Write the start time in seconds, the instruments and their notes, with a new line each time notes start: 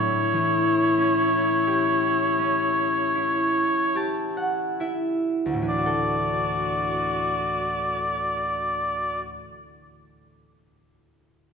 Already playing: harp A2 D4, viola E4, bagpipes C#5
0.33 harp E3
0.98 harp C#4
1.67 harp G4
2.39 harp C#4
3.15 harp E4
3.95 harp G4 A5
4.37 harp F#5
4.80 harp E4 E5
5.46 harp D2
5.54 harp A2
5.62 harp E3
5.67 harp D4, viola F#4, bagpipes D5
5.78 harp F#4
5.86 harp A4